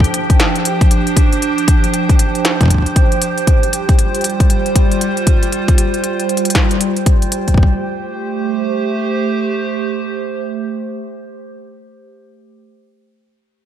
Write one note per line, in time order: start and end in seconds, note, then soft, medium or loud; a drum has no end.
0.00 3.43 F3 medium
0.00 3.43 D4 medium
0.00 7.59 G4 medium
0.00 7.54 C5 medium
0.00 7.59 G5 medium
0.00 kick loud
0.04 closed hi-hat soft
0.14 closed hi-hat medium
0.30 kick loud
0.30 closed hi-hat soft
0.40 snare loud
0.40 closed hi-hat medium
0.56 closed hi-hat soft
0.65 closed hi-hat medium
0.81 kick loud
0.81 closed hi-hat soft
0.91 closed hi-hat medium
1.07 closed hi-hat soft
1.17 kick loud
1.17 closed hi-hat medium
1.33 closed hi-hat soft
1.42 closed hi-hat medium
1.58 closed hi-hat soft
1.68 kick loud
1.68 closed hi-hat medium
1.84 closed hi-hat soft
1.94 closed hi-hat medium
2.09 kick loud
2.09 closed hi-hat soft
2.19 closed hi-hat medium
2.35 closed hi-hat soft
2.45 snare loud
2.45 closed hi-hat medium
2.61 kick loud
2.61 closed hi-hat soft
2.63 kick medium
2.66 kick medium
2.68 kick medium
2.70 kick soft
2.70 closed hi-hat medium
2.74 kick soft
2.78 kick soft
2.82 kick soft
2.82 closed hi-hat soft
2.96 kick loud
2.96 closed hi-hat medium
3.12 closed hi-hat soft
3.22 closed hi-hat medium
3.38 closed hi-hat soft
3.47 7.53 G3 medium
3.47 7.54 F4 medium
3.47 kick loud
3.47 closed hi-hat medium
3.63 closed hi-hat soft
3.73 closed hi-hat medium
3.89 kick loud
3.89 closed hi-hat soft
3.99 closed hi-hat medium
4.15 closed hi-hat soft
4.21 closed hi-hat soft
4.24 closed hi-hat medium
4.30 closed hi-hat soft
4.40 kick loud
4.40 closed hi-hat soft
4.50 closed hi-hat medium
4.66 closed hi-hat soft
4.75 kick loud
4.75 closed hi-hat medium
4.91 closed hi-hat soft
5.01 closed hi-hat medium
5.17 closed hi-hat soft
5.27 kick loud
5.27 closed hi-hat medium
5.43 closed hi-hat soft
5.52 closed hi-hat medium
5.68 kick loud
5.68 closed hi-hat soft
5.78 closed hi-hat medium
5.94 closed hi-hat soft
6.04 closed hi-hat medium
6.20 closed hi-hat soft
6.29 closed hi-hat soft
6.37 closed hi-hat medium
6.45 closed hi-hat medium
6.50 closed hi-hat medium
6.55 kick loud
6.55 snare loud
6.55 closed hi-hat medium
6.71 closed hi-hat soft
6.81 closed hi-hat medium
6.96 closed hi-hat soft
7.06 kick loud
7.06 closed hi-hat medium
7.22 closed hi-hat soft
7.32 closed hi-hat medium
7.48 kick soft
7.48 closed hi-hat soft
7.54 12.07 A3 medium
7.54 12.07 G4 medium
7.54 12.07 C5 medium
7.54 kick medium
7.58 kick loud
7.63 kick medium